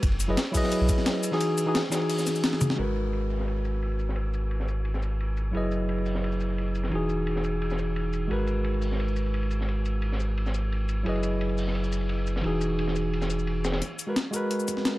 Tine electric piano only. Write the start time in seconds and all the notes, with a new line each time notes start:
0.28 F#3 E4 G#4 B4 D#5
0.52 F#3 E4 G#4
0.56 B4 D#5
1.31 E3 D#4 F#4 G#4
1.66 E3 D#4 F#4 G#4
1.90 E3 D#4 F#4
1.95 G#4
2.75 G#3 F#4 A#4
2.81 B4
5.51 F#3 E4 G#4
5.56 B4 D#5
6.89 E3 D#4 F#4
6.95 G#4
8.27 G#3 F#4 A#4
8.33 B4
11.03 F#3 E4 G#4
11.07 B4 D#5
12.41 E3 D#4 F#4
12.47 G#4
14.07 G#3 F#4 A#4 B4
14.31 G#3 F#4 A#4
14.36 B4